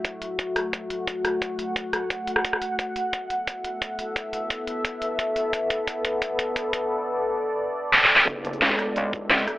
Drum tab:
HH |x-----x-----x-----x-----x-----x-----x-----x-----|x-----x-----x-----x-----x-----x-----x-----x-----|x-----x-----x-----x-----x-----x-----x-----x-----|x-----x-----x-----x-----x-----x-----x-----x-----|
SD |------------------r-----------------------r-----|------------------r--------------r-----r--------|------------------------------------------------|------------------------------------------------|
BD |o-----------o-----------o-----------o-----------|o-----------o-----------o-----------o-----------|o-----------o-----------o-----------o-----------|o-----------o-----------o-----------o-----------|

HH |x-----x-----x-----x-----x-----x-----x-----x-----|------------------------------------------------|x-----x--x--x-----x-----x-----x-----x--x--x-----|
SD |------------------------------------------------|------------------------------------o---o---o---|------------o--o--r-----------------o-----r-----|
BD |o-----o-----o-----o-----o-----o-----o-----o-----|------------------------------------------------|o-----------------------------o-----------------|